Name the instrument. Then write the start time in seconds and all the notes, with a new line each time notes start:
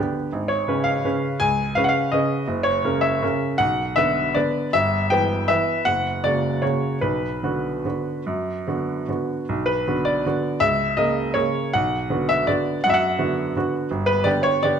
grand piano
Already playing: D5
0.00 D3 B3 G4
0.32 G#1
0.48 C#5
0.68 C#3 C#4 B4
0.84 F5
1.05 C#3 C#4 B4
1.40 C#2 G#5
1.75 C#3 C#4 B4 F5
1.84 F#5
1.89 F5
2.12 C#3 C#4 B4 D#5
2.48 F#1
2.63 C#5
2.84 C#3 C#4 A#4
3.01 E5
3.22 C#3 C#4 A#4
3.58 B1 F#5
3.96 D3 B3 B4 E5
4.35 D3 B3 B4 D5
4.73 G1 E5
5.10 E3 B3 B4 G5
5.48 E3 B3 B4 E5
5.85 F#1 F#5
6.24 C#3 A#3 F#4 D5
6.62 C#3 A#3 F#4 C#5
7.01 B1 B4
7.43 D3 B3 F#4
7.85 D3 B3 F#4
8.26 F#2
8.68 D3 B3 F#4
9.09 D3 B3 F#4
9.49 B1
9.66 B4
9.88 D3 B3 F#4
10.05 D5
10.26 D3 B3 F#4
10.60 C#2 E5
10.97 C#3 A#3 A#4 D#5
11.34 C#3 A#3 A#4 C#5
11.73 B1 F#5
12.10 D3 B3 F#4
12.29 E5
12.47 D3 B3 F#4 D5
12.84 F#2 F#5
12.90 E5
12.94 F#5
13.19 D3 B3 F#4
13.56 D3 B3 F#4
13.91 G1
14.06 B4
14.24 D3 B3 G4 D5
14.43 C#5
14.63 D3 B3 G4 D5